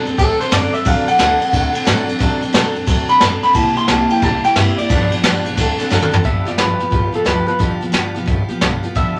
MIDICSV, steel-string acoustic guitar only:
0, 0, Header, 1, 2, 480
1, 0, Start_track
1, 0, Key_signature, 1, "major"
1, 0, Tempo, 337648
1, 1217, Time_signature, 4, 2, 24, 8
1, 13072, End_track
2, 0, Start_track
2, 0, Title_t, "Steel-string acoustic guitar"
2, 0, Program_c, 0, 25
2, 77, Note_on_c, 0, 69, 63
2, 105, Note_on_c, 0, 62, 55
2, 130, Note_on_c, 0, 60, 53
2, 243, Note_off_c, 0, 60, 0
2, 246, Note_on_c, 0, 54, 62
2, 252, Note_off_c, 0, 69, 0
2, 259, Note_off_c, 0, 62, 0
2, 260, Note_on_c, 0, 60, 62
2, 277, Note_on_c, 0, 62, 75
2, 295, Note_on_c, 0, 69, 69
2, 548, Note_off_c, 0, 69, 0
2, 563, Note_off_c, 0, 54, 0
2, 565, Note_on_c, 0, 69, 51
2, 571, Note_off_c, 0, 60, 0
2, 575, Note_off_c, 0, 62, 0
2, 592, Note_on_c, 0, 62, 47
2, 611, Note_on_c, 0, 60, 46
2, 721, Note_off_c, 0, 60, 0
2, 725, Note_on_c, 0, 50, 82
2, 734, Note_off_c, 0, 62, 0
2, 735, Note_on_c, 0, 54, 81
2, 736, Note_off_c, 0, 69, 0
2, 738, Note_on_c, 0, 60, 77
2, 751, Note_on_c, 0, 62, 85
2, 754, Note_on_c, 0, 69, 86
2, 1014, Note_off_c, 0, 69, 0
2, 1032, Note_on_c, 0, 69, 55
2, 1043, Note_off_c, 0, 50, 0
2, 1044, Note_off_c, 0, 62, 0
2, 1048, Note_off_c, 0, 54, 0
2, 1049, Note_off_c, 0, 60, 0
2, 1061, Note_on_c, 0, 62, 52
2, 1083, Note_on_c, 0, 60, 44
2, 1199, Note_off_c, 0, 60, 0
2, 1207, Note_on_c, 0, 50, 85
2, 1209, Note_off_c, 0, 69, 0
2, 1211, Note_off_c, 0, 62, 0
2, 1212, Note_on_c, 0, 54, 81
2, 1216, Note_on_c, 0, 60, 94
2, 1228, Note_on_c, 0, 62, 91
2, 1231, Note_on_c, 0, 69, 85
2, 1494, Note_off_c, 0, 69, 0
2, 1511, Note_on_c, 0, 69, 57
2, 1514, Note_off_c, 0, 62, 0
2, 1524, Note_off_c, 0, 50, 0
2, 1526, Note_off_c, 0, 54, 0
2, 1528, Note_off_c, 0, 60, 0
2, 1531, Note_on_c, 0, 62, 45
2, 1558, Note_on_c, 0, 60, 37
2, 1676, Note_off_c, 0, 60, 0
2, 1676, Note_on_c, 0, 50, 89
2, 1683, Note_off_c, 0, 62, 0
2, 1686, Note_on_c, 0, 54, 87
2, 1688, Note_off_c, 0, 69, 0
2, 1693, Note_on_c, 0, 60, 78
2, 1700, Note_on_c, 0, 62, 87
2, 1712, Note_on_c, 0, 69, 98
2, 1967, Note_off_c, 0, 69, 0
2, 1985, Note_on_c, 0, 69, 56
2, 1988, Note_off_c, 0, 62, 0
2, 1998, Note_off_c, 0, 50, 0
2, 2003, Note_off_c, 0, 54, 0
2, 2005, Note_on_c, 0, 62, 44
2, 2006, Note_off_c, 0, 60, 0
2, 2031, Note_on_c, 0, 60, 47
2, 2148, Note_off_c, 0, 60, 0
2, 2157, Note_on_c, 0, 54, 78
2, 2165, Note_off_c, 0, 69, 0
2, 2165, Note_on_c, 0, 60, 67
2, 2167, Note_off_c, 0, 62, 0
2, 2184, Note_on_c, 0, 62, 85
2, 2196, Note_on_c, 0, 69, 79
2, 2434, Note_off_c, 0, 69, 0
2, 2451, Note_on_c, 0, 69, 63
2, 2460, Note_off_c, 0, 62, 0
2, 2477, Note_on_c, 0, 62, 56
2, 2478, Note_off_c, 0, 54, 0
2, 2482, Note_off_c, 0, 60, 0
2, 2497, Note_on_c, 0, 60, 54
2, 2633, Note_on_c, 0, 50, 94
2, 2634, Note_off_c, 0, 60, 0
2, 2636, Note_off_c, 0, 62, 0
2, 2638, Note_off_c, 0, 69, 0
2, 2647, Note_on_c, 0, 54, 92
2, 2651, Note_on_c, 0, 60, 95
2, 2654, Note_on_c, 0, 62, 90
2, 2661, Note_on_c, 0, 69, 98
2, 2925, Note_off_c, 0, 69, 0
2, 2942, Note_on_c, 0, 69, 65
2, 2954, Note_off_c, 0, 62, 0
2, 2956, Note_off_c, 0, 50, 0
2, 2963, Note_off_c, 0, 54, 0
2, 2965, Note_off_c, 0, 60, 0
2, 2971, Note_on_c, 0, 62, 58
2, 2986, Note_on_c, 0, 60, 56
2, 3111, Note_on_c, 0, 50, 92
2, 3114, Note_off_c, 0, 60, 0
2, 3123, Note_off_c, 0, 69, 0
2, 3128, Note_on_c, 0, 54, 86
2, 3129, Note_off_c, 0, 62, 0
2, 3131, Note_on_c, 0, 60, 104
2, 3146, Note_on_c, 0, 62, 107
2, 3148, Note_on_c, 0, 69, 96
2, 3408, Note_off_c, 0, 69, 0
2, 3425, Note_on_c, 0, 69, 59
2, 3433, Note_off_c, 0, 62, 0
2, 3435, Note_off_c, 0, 50, 0
2, 3443, Note_off_c, 0, 54, 0
2, 3445, Note_off_c, 0, 60, 0
2, 3450, Note_on_c, 0, 62, 51
2, 3470, Note_on_c, 0, 60, 55
2, 3591, Note_on_c, 0, 50, 94
2, 3598, Note_off_c, 0, 60, 0
2, 3600, Note_off_c, 0, 62, 0
2, 3603, Note_on_c, 0, 54, 99
2, 3604, Note_off_c, 0, 69, 0
2, 3615, Note_on_c, 0, 60, 104
2, 3618, Note_on_c, 0, 62, 107
2, 3628, Note_on_c, 0, 69, 100
2, 3890, Note_off_c, 0, 69, 0
2, 3907, Note_on_c, 0, 69, 64
2, 3914, Note_off_c, 0, 62, 0
2, 3915, Note_off_c, 0, 50, 0
2, 3921, Note_off_c, 0, 54, 0
2, 3927, Note_off_c, 0, 60, 0
2, 3931, Note_on_c, 0, 62, 54
2, 3954, Note_on_c, 0, 60, 47
2, 4072, Note_off_c, 0, 60, 0
2, 4073, Note_on_c, 0, 54, 79
2, 4085, Note_off_c, 0, 69, 0
2, 4086, Note_off_c, 0, 62, 0
2, 4089, Note_on_c, 0, 60, 77
2, 4103, Note_on_c, 0, 62, 83
2, 4118, Note_on_c, 0, 69, 70
2, 4368, Note_off_c, 0, 69, 0
2, 4385, Note_on_c, 0, 69, 63
2, 4389, Note_off_c, 0, 62, 0
2, 4396, Note_off_c, 0, 54, 0
2, 4403, Note_off_c, 0, 60, 0
2, 4407, Note_on_c, 0, 62, 52
2, 4430, Note_on_c, 0, 60, 48
2, 4550, Note_off_c, 0, 60, 0
2, 4552, Note_on_c, 0, 50, 78
2, 4560, Note_off_c, 0, 62, 0
2, 4560, Note_on_c, 0, 54, 92
2, 4564, Note_off_c, 0, 69, 0
2, 4567, Note_on_c, 0, 60, 88
2, 4577, Note_on_c, 0, 62, 96
2, 4581, Note_on_c, 0, 69, 94
2, 4850, Note_off_c, 0, 69, 0
2, 4868, Note_on_c, 0, 69, 59
2, 4875, Note_off_c, 0, 50, 0
2, 4878, Note_off_c, 0, 62, 0
2, 4879, Note_off_c, 0, 54, 0
2, 4882, Note_off_c, 0, 60, 0
2, 4895, Note_on_c, 0, 62, 48
2, 4911, Note_on_c, 0, 60, 48
2, 5022, Note_on_c, 0, 48, 82
2, 5038, Note_off_c, 0, 60, 0
2, 5038, Note_on_c, 0, 55, 81
2, 5044, Note_off_c, 0, 62, 0
2, 5044, Note_on_c, 0, 58, 95
2, 5045, Note_off_c, 0, 69, 0
2, 5050, Note_on_c, 0, 64, 81
2, 5056, Note_on_c, 0, 67, 95
2, 5324, Note_off_c, 0, 67, 0
2, 5341, Note_on_c, 0, 67, 50
2, 5349, Note_off_c, 0, 48, 0
2, 5354, Note_off_c, 0, 64, 0
2, 5357, Note_off_c, 0, 55, 0
2, 5360, Note_off_c, 0, 58, 0
2, 5371, Note_on_c, 0, 64, 46
2, 5390, Note_on_c, 0, 58, 47
2, 5512, Note_off_c, 0, 58, 0
2, 5514, Note_on_c, 0, 48, 89
2, 5522, Note_off_c, 0, 67, 0
2, 5522, Note_on_c, 0, 55, 88
2, 5524, Note_off_c, 0, 64, 0
2, 5529, Note_on_c, 0, 58, 93
2, 5541, Note_on_c, 0, 64, 101
2, 5547, Note_on_c, 0, 67, 85
2, 5806, Note_off_c, 0, 67, 0
2, 5823, Note_on_c, 0, 67, 57
2, 5830, Note_off_c, 0, 64, 0
2, 5835, Note_off_c, 0, 48, 0
2, 5840, Note_off_c, 0, 55, 0
2, 5843, Note_off_c, 0, 58, 0
2, 5847, Note_on_c, 0, 64, 50
2, 5870, Note_on_c, 0, 58, 53
2, 5996, Note_on_c, 0, 55, 65
2, 5998, Note_off_c, 0, 58, 0
2, 6003, Note_off_c, 0, 67, 0
2, 6014, Note_off_c, 0, 64, 0
2, 6015, Note_on_c, 0, 58, 64
2, 6032, Note_on_c, 0, 64, 66
2, 6038, Note_on_c, 0, 67, 72
2, 6293, Note_off_c, 0, 67, 0
2, 6310, Note_on_c, 0, 67, 59
2, 6316, Note_off_c, 0, 55, 0
2, 6321, Note_off_c, 0, 64, 0
2, 6325, Note_off_c, 0, 58, 0
2, 6338, Note_on_c, 0, 64, 57
2, 6359, Note_on_c, 0, 58, 52
2, 6477, Note_on_c, 0, 48, 90
2, 6483, Note_off_c, 0, 58, 0
2, 6486, Note_off_c, 0, 64, 0
2, 6486, Note_off_c, 0, 67, 0
2, 6491, Note_on_c, 0, 55, 89
2, 6500, Note_on_c, 0, 58, 97
2, 6503, Note_on_c, 0, 64, 94
2, 6516, Note_on_c, 0, 67, 97
2, 6780, Note_off_c, 0, 67, 0
2, 6796, Note_off_c, 0, 48, 0
2, 6797, Note_on_c, 0, 67, 57
2, 6803, Note_off_c, 0, 55, 0
2, 6803, Note_off_c, 0, 64, 0
2, 6808, Note_off_c, 0, 58, 0
2, 6820, Note_on_c, 0, 64, 54
2, 6841, Note_on_c, 0, 58, 54
2, 6957, Note_on_c, 0, 43, 84
2, 6966, Note_off_c, 0, 58, 0
2, 6966, Note_on_c, 0, 50, 97
2, 6969, Note_off_c, 0, 67, 0
2, 6972, Note_on_c, 0, 59, 86
2, 6975, Note_off_c, 0, 64, 0
2, 6975, Note_on_c, 0, 53, 87
2, 6981, Note_on_c, 0, 62, 86
2, 6988, Note_on_c, 0, 67, 98
2, 7244, Note_off_c, 0, 67, 0
2, 7261, Note_on_c, 0, 67, 57
2, 7263, Note_off_c, 0, 62, 0
2, 7276, Note_off_c, 0, 43, 0
2, 7278, Note_off_c, 0, 59, 0
2, 7280, Note_off_c, 0, 50, 0
2, 7280, Note_on_c, 0, 62, 48
2, 7285, Note_off_c, 0, 53, 0
2, 7295, Note_on_c, 0, 59, 51
2, 7307, Note_on_c, 0, 53, 47
2, 7435, Note_off_c, 0, 53, 0
2, 7439, Note_on_c, 0, 43, 98
2, 7441, Note_off_c, 0, 67, 0
2, 7441, Note_on_c, 0, 50, 106
2, 7445, Note_off_c, 0, 59, 0
2, 7447, Note_off_c, 0, 62, 0
2, 7452, Note_on_c, 0, 53, 101
2, 7462, Note_on_c, 0, 59, 104
2, 7464, Note_on_c, 0, 62, 103
2, 7472, Note_on_c, 0, 67, 117
2, 7728, Note_off_c, 0, 67, 0
2, 7745, Note_off_c, 0, 62, 0
2, 7745, Note_on_c, 0, 67, 58
2, 7757, Note_off_c, 0, 43, 0
2, 7758, Note_off_c, 0, 50, 0
2, 7762, Note_on_c, 0, 62, 64
2, 7763, Note_off_c, 0, 53, 0
2, 7768, Note_off_c, 0, 59, 0
2, 7783, Note_on_c, 0, 59, 53
2, 7791, Note_on_c, 0, 53, 55
2, 7911, Note_off_c, 0, 53, 0
2, 7917, Note_on_c, 0, 54, 74
2, 7923, Note_off_c, 0, 67, 0
2, 7931, Note_off_c, 0, 59, 0
2, 7931, Note_off_c, 0, 62, 0
2, 7936, Note_on_c, 0, 60, 72
2, 7951, Note_on_c, 0, 62, 76
2, 7967, Note_on_c, 0, 69, 91
2, 8203, Note_off_c, 0, 69, 0
2, 8220, Note_on_c, 0, 69, 67
2, 8224, Note_off_c, 0, 62, 0
2, 8236, Note_off_c, 0, 54, 0
2, 8241, Note_on_c, 0, 62, 63
2, 8245, Note_off_c, 0, 60, 0
2, 8266, Note_on_c, 0, 60, 56
2, 8390, Note_off_c, 0, 60, 0
2, 8392, Note_on_c, 0, 50, 94
2, 8398, Note_on_c, 0, 54, 110
2, 8400, Note_off_c, 0, 69, 0
2, 8402, Note_off_c, 0, 62, 0
2, 8407, Note_on_c, 0, 60, 101
2, 8419, Note_on_c, 0, 62, 103
2, 8421, Note_on_c, 0, 69, 114
2, 8674, Note_off_c, 0, 69, 0
2, 8691, Note_on_c, 0, 69, 66
2, 8707, Note_off_c, 0, 62, 0
2, 8713, Note_off_c, 0, 50, 0
2, 8716, Note_off_c, 0, 54, 0
2, 8721, Note_off_c, 0, 60, 0
2, 8724, Note_on_c, 0, 62, 64
2, 8739, Note_on_c, 0, 60, 58
2, 8870, Note_on_c, 0, 43, 77
2, 8876, Note_off_c, 0, 69, 0
2, 8881, Note_on_c, 0, 50, 71
2, 8885, Note_off_c, 0, 60, 0
2, 8885, Note_on_c, 0, 53, 75
2, 8890, Note_on_c, 0, 59, 76
2, 8892, Note_off_c, 0, 62, 0
2, 8901, Note_on_c, 0, 65, 75
2, 8903, Note_on_c, 0, 67, 78
2, 9155, Note_off_c, 0, 67, 0
2, 9172, Note_on_c, 0, 67, 52
2, 9176, Note_off_c, 0, 65, 0
2, 9193, Note_off_c, 0, 43, 0
2, 9193, Note_on_c, 0, 65, 51
2, 9196, Note_off_c, 0, 59, 0
2, 9198, Note_off_c, 0, 50, 0
2, 9200, Note_off_c, 0, 53, 0
2, 9213, Note_on_c, 0, 59, 44
2, 9221, Note_on_c, 0, 53, 40
2, 9346, Note_off_c, 0, 53, 0
2, 9350, Note_on_c, 0, 43, 86
2, 9353, Note_on_c, 0, 50, 75
2, 9356, Note_off_c, 0, 67, 0
2, 9358, Note_off_c, 0, 59, 0
2, 9362, Note_off_c, 0, 65, 0
2, 9363, Note_on_c, 0, 53, 81
2, 9375, Note_on_c, 0, 59, 90
2, 9379, Note_on_c, 0, 65, 84
2, 9384, Note_on_c, 0, 67, 85
2, 9642, Note_off_c, 0, 67, 0
2, 9659, Note_on_c, 0, 67, 53
2, 9661, Note_off_c, 0, 65, 0
2, 9673, Note_off_c, 0, 43, 0
2, 9673, Note_off_c, 0, 59, 0
2, 9675, Note_off_c, 0, 50, 0
2, 9678, Note_on_c, 0, 65, 45
2, 9679, Note_off_c, 0, 53, 0
2, 9690, Note_on_c, 0, 59, 50
2, 9706, Note_on_c, 0, 53, 45
2, 9799, Note_off_c, 0, 53, 0
2, 9816, Note_on_c, 0, 53, 57
2, 9820, Note_off_c, 0, 59, 0
2, 9836, Note_off_c, 0, 65, 0
2, 9837, Note_on_c, 0, 59, 65
2, 9840, Note_off_c, 0, 67, 0
2, 9853, Note_on_c, 0, 65, 67
2, 9866, Note_on_c, 0, 67, 64
2, 10110, Note_off_c, 0, 67, 0
2, 10127, Note_off_c, 0, 65, 0
2, 10127, Note_on_c, 0, 67, 50
2, 10137, Note_off_c, 0, 59, 0
2, 10145, Note_on_c, 0, 65, 55
2, 10146, Note_off_c, 0, 53, 0
2, 10154, Note_on_c, 0, 59, 45
2, 10169, Note_on_c, 0, 53, 47
2, 10301, Note_on_c, 0, 43, 83
2, 10302, Note_off_c, 0, 53, 0
2, 10306, Note_off_c, 0, 59, 0
2, 10310, Note_off_c, 0, 65, 0
2, 10313, Note_on_c, 0, 50, 86
2, 10315, Note_off_c, 0, 67, 0
2, 10319, Note_on_c, 0, 53, 89
2, 10323, Note_on_c, 0, 59, 84
2, 10327, Note_on_c, 0, 65, 84
2, 10334, Note_on_c, 0, 67, 90
2, 10593, Note_off_c, 0, 67, 0
2, 10611, Note_on_c, 0, 67, 55
2, 10615, Note_off_c, 0, 65, 0
2, 10627, Note_off_c, 0, 59, 0
2, 10629, Note_off_c, 0, 43, 0
2, 10632, Note_on_c, 0, 65, 52
2, 10635, Note_off_c, 0, 50, 0
2, 10638, Note_off_c, 0, 53, 0
2, 10644, Note_on_c, 0, 59, 45
2, 10665, Note_on_c, 0, 53, 48
2, 10778, Note_off_c, 0, 53, 0
2, 10786, Note_on_c, 0, 43, 82
2, 10787, Note_off_c, 0, 59, 0
2, 10789, Note_off_c, 0, 65, 0
2, 10792, Note_on_c, 0, 50, 78
2, 10795, Note_on_c, 0, 53, 70
2, 10797, Note_off_c, 0, 67, 0
2, 10804, Note_on_c, 0, 59, 78
2, 10806, Note_on_c, 0, 65, 80
2, 10819, Note_on_c, 0, 67, 78
2, 11084, Note_off_c, 0, 67, 0
2, 11098, Note_off_c, 0, 65, 0
2, 11101, Note_on_c, 0, 67, 55
2, 11112, Note_off_c, 0, 43, 0
2, 11113, Note_off_c, 0, 59, 0
2, 11115, Note_off_c, 0, 50, 0
2, 11115, Note_on_c, 0, 65, 54
2, 11117, Note_off_c, 0, 53, 0
2, 11130, Note_on_c, 0, 59, 49
2, 11144, Note_on_c, 0, 53, 45
2, 11256, Note_off_c, 0, 53, 0
2, 11259, Note_on_c, 0, 43, 103
2, 11264, Note_off_c, 0, 59, 0
2, 11269, Note_on_c, 0, 50, 90
2, 11273, Note_off_c, 0, 65, 0
2, 11273, Note_on_c, 0, 53, 95
2, 11274, Note_off_c, 0, 67, 0
2, 11281, Note_on_c, 0, 59, 101
2, 11290, Note_on_c, 0, 65, 102
2, 11291, Note_on_c, 0, 67, 87
2, 11563, Note_off_c, 0, 67, 0
2, 11580, Note_on_c, 0, 67, 60
2, 11584, Note_off_c, 0, 65, 0
2, 11589, Note_off_c, 0, 43, 0
2, 11593, Note_off_c, 0, 59, 0
2, 11594, Note_off_c, 0, 50, 0
2, 11596, Note_off_c, 0, 53, 0
2, 11601, Note_on_c, 0, 65, 58
2, 11610, Note_on_c, 0, 59, 55
2, 11632, Note_on_c, 0, 53, 53
2, 11722, Note_off_c, 0, 53, 0
2, 11739, Note_on_c, 0, 53, 73
2, 11746, Note_off_c, 0, 59, 0
2, 11755, Note_off_c, 0, 65, 0
2, 11762, Note_off_c, 0, 67, 0
2, 11763, Note_on_c, 0, 59, 78
2, 11772, Note_on_c, 0, 65, 68
2, 11788, Note_on_c, 0, 67, 75
2, 12046, Note_off_c, 0, 67, 0
2, 12064, Note_off_c, 0, 65, 0
2, 12064, Note_on_c, 0, 67, 61
2, 12070, Note_off_c, 0, 53, 0
2, 12076, Note_off_c, 0, 59, 0
2, 12081, Note_on_c, 0, 65, 54
2, 12093, Note_on_c, 0, 59, 55
2, 12109, Note_on_c, 0, 53, 50
2, 12232, Note_off_c, 0, 53, 0
2, 12240, Note_off_c, 0, 59, 0
2, 12243, Note_on_c, 0, 43, 85
2, 12245, Note_off_c, 0, 67, 0
2, 12248, Note_on_c, 0, 50, 81
2, 12249, Note_off_c, 0, 65, 0
2, 12249, Note_on_c, 0, 53, 91
2, 12257, Note_on_c, 0, 59, 105
2, 12266, Note_on_c, 0, 65, 88
2, 12272, Note_on_c, 0, 67, 95
2, 12534, Note_off_c, 0, 67, 0
2, 12551, Note_on_c, 0, 67, 62
2, 12552, Note_off_c, 0, 65, 0
2, 12562, Note_off_c, 0, 43, 0
2, 12562, Note_off_c, 0, 59, 0
2, 12565, Note_off_c, 0, 50, 0
2, 12565, Note_off_c, 0, 53, 0
2, 12569, Note_on_c, 0, 65, 54
2, 12579, Note_on_c, 0, 59, 59
2, 12598, Note_on_c, 0, 53, 54
2, 12716, Note_off_c, 0, 53, 0
2, 12722, Note_on_c, 0, 43, 73
2, 12724, Note_off_c, 0, 59, 0
2, 12726, Note_off_c, 0, 65, 0
2, 12728, Note_on_c, 0, 50, 77
2, 12729, Note_off_c, 0, 67, 0
2, 12733, Note_on_c, 0, 53, 82
2, 12741, Note_on_c, 0, 59, 86
2, 12743, Note_on_c, 0, 65, 92
2, 12752, Note_on_c, 0, 67, 80
2, 13011, Note_off_c, 0, 67, 0
2, 13028, Note_on_c, 0, 67, 51
2, 13035, Note_off_c, 0, 65, 0
2, 13042, Note_off_c, 0, 43, 0
2, 13045, Note_off_c, 0, 50, 0
2, 13047, Note_off_c, 0, 53, 0
2, 13051, Note_off_c, 0, 59, 0
2, 13072, Note_off_c, 0, 67, 0
2, 13072, End_track
0, 0, End_of_file